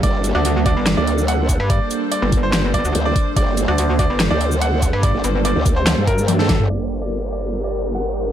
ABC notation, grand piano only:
X:1
M:4/4
L:1/16
Q:1/4=144
K:Gm
V:1 name="Grand piano"
d2 z d2 z d2 z d2 z ^f3 z | d3 z d2 z c2 z d2 z d2 z | d2 z d2 z d2 z d2 z ^f3 z | d3 z d2 z c2 z B2 z A2 z |
d2 z d2 z d2 z d2 z ^f3 z |]